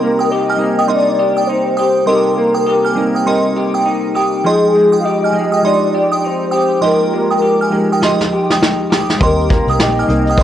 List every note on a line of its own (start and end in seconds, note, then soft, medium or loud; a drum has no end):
0.00 2.07 C3 medium
0.00 0.43 G3 medium
0.00 0.60 A#3 medium
0.00 0.44 C4 medium
0.00 0.44 D#4 medium
0.00 0.91 D#4 medium
0.00 0.31 G4 medium
0.00 0.31 A#4 loud
0.00 0.45 A#4 medium
0.19 0.31 G5 medium
0.19 0.30 D#6 medium
0.30 1.19 G4 medium
0.30 0.86 D#5 loud
0.49 0.60 G#5 soft
0.49 0.60 F6 medium
0.57 0.83 G3 medium
0.57 0.84 C4 medium
0.57 0.84 D#4 medium
0.57 0.85 A#4 medium
0.61 2.36 A#3 medium
0.79 0.90 G5 medium
0.79 0.90 D#6 medium
0.87 1.85 G3 medium
0.87 1.85 C4 medium
0.87 1.86 D#4 medium
0.87 1.86 A#4 medium
0.87 1.48 D5 loud
0.87 1.07 D#5 medium
0.87 1.06 C6 medium
0.92 1.49 D#4 medium
1.19 1.79 G4 medium
1.37 1.49 G5 medium
1.37 1.48 D#6 medium
1.47 3.26 D#4 medium
1.47 2.08 C5 medium
1.77 2.09 G4 medium
1.77 1.95 G5 medium
1.77 1.95 D#6 medium
2.06 4.46 C3 medium
2.06 2.81 G3 medium
2.06 2.82 C4 medium
2.06 2.82 D#4 medium
2.06 2.66 G4 medium
2.06 2.16 A4 medium
2.06 3.85 A#4 medium
2.06 2.25 D#5 medium
2.06 2.25 C6 medium
2.15 2.86 A#4 medium
2.37 2.97 A#3 medium
2.54 2.66 G5 medium
2.54 2.66 D#6 medium
2.66 3.56 G4 medium
2.85 2.97 G#5 medium
2.85 2.96 F6 medium
2.95 3.21 G3 medium
2.95 4.53 A#3 medium
2.95 3.21 C4 medium
2.95 3.22 D#4 medium
2.95 3.22 A#4 medium
3.15 3.27 G5 medium
3.15 3.26 D#6 medium
3.26 4.23 G3 medium
3.26 4.23 C4 medium
3.26 3.86 D#4 medium
3.26 4.24 D#4 medium
3.26 4.24 A#4 medium
3.26 3.44 D#5 medium
3.26 3.44 C6 medium
3.57 4.15 G4 medium
3.74 3.86 G5 medium
3.74 3.86 D#6 medium
3.86 5.64 D#4 medium
4.15 4.47 G4 medium
4.15 4.33 G5 medium
4.15 4.33 D#6 medium
4.44 5.19 F3 medium
4.44 6.82 F3 medium
4.44 5.19 G#3 medium
4.44 5.20 D#4 medium
4.44 4.95 G#4 loud
4.44 4.63 D#5 medium
4.44 5.20 G5 medium
4.44 4.63 C6 medium
4.75 5.34 G#3 medium
4.92 5.04 G5 medium
4.92 5.04 D#6 medium
5.00 5.06 F5 medium
5.04 5.94 G4 medium
5.04 5.67 D#5 loud
5.24 5.35 G#5 medium
5.24 5.35 F6 medium
5.32 5.58 F3 medium
5.32 5.59 G#3 medium
5.32 7.12 G#3 medium
5.32 5.59 D#4 medium
5.32 5.59 G4 medium
5.52 5.64 G5 medium
5.52 5.64 D#6 medium
5.62 6.60 F3 medium
5.62 6.60 G#3 medium
5.62 6.61 D#4 medium
5.62 6.24 D#4 medium
5.62 6.61 G4 medium
5.62 6.27 D5 loud
5.62 5.82 D#5 medium
5.62 5.81 C6 medium
5.94 6.53 G4 medium
6.12 6.24 G5 medium
6.12 6.23 D#6 medium
6.24 8.02 D#4 medium
6.24 6.84 C5 medium
6.51 6.83 G4 medium
6.51 6.69 G5 medium
6.51 6.69 D#6 medium
6.81 7.56 F3 medium
6.81 9.20 F3 medium
6.81 7.56 G#3 medium
6.81 7.57 D#4 medium
6.81 7.57 G4 medium
6.81 7.42 G4 medium
6.81 6.99 D#5 medium
6.81 6.99 C6 medium
6.85 8.58 A#4 medium
7.13 7.70 G#3 medium
7.30 7.42 G5 medium
7.30 7.42 D#6 medium
7.42 8.32 G4 medium
7.61 7.73 G#5 medium
7.61 7.72 F6 medium
7.70 7.96 F3 medium
7.70 7.97 G#3 medium
7.70 9.27 G#3 medium
7.70 7.97 D#4 medium
7.70 7.97 G4 medium
7.92 8.03 G5 medium
7.92 8.02 D#6 medium
8.00 8.97 F3 medium
8.00 8.97 G#3 medium
8.00 8.98 D#4 medium
8.00 8.61 D#4 medium
8.00 8.98 G4 medium
8.00 8.20 C6 medium
8.00 snare medium
8.04 8.20 D#5 medium
8.21 snare medium
8.33 8.90 G4 medium
8.50 8.62 G5 medium
8.50 8.62 D#6 medium
8.50 snare medium
8.61 10.38 D#4 medium
8.61 snare medium
8.90 9.20 G4 medium
8.90 9.09 G5 medium
8.90 9.09 D#6 medium
8.90 snare medium
9.10 snare medium
9.18 9.58 D#2 loud
9.18 9.93 G3 medium
9.18 9.94 C4 medium
9.18 9.94 D#4 medium
9.18 9.79 G4 medium
9.18 9.94 A#4 medium
9.18 kick loud
9.18 closed hi-hat medium
9.23 9.84 A#4 loud
9.23 9.39 D#5 medium
9.23 9.39 C6 medium
9.40 closed hi-hat soft
9.49 10.09 A#3 medium
9.49 kick medium
9.49 closed hi-hat medium
9.67 9.79 C2 medium
9.67 9.81 G5 medium
9.67 9.80 D#6 medium
9.67 closed hi-hat soft
9.79 10.03 A#1 medium
9.79 10.43 G4 medium
9.79 10.42 D#5 loud
9.79 snare medium
9.99 10.10 G#5 soft
9.99 10.10 F6 medium
9.99 closed hi-hat soft
10.07 10.38 C2 medium
10.07 10.33 G3 medium
10.07 10.43 A#3 medium
10.07 10.34 C4 medium
10.07 10.34 D#4 soft
10.07 10.34 A#4 medium
10.07 closed hi-hat medium
10.27 10.40 G5 medium
10.27 10.40 D#6 medium
10.27 closed hi-hat medium
10.37 10.43 A#1 loud
10.37 10.43 G3 medium
10.37 10.43 C4 medium
10.37 10.43 D#4 medium
10.37 10.43 A#4 medium
10.37 kick medium
10.37 closed hi-hat medium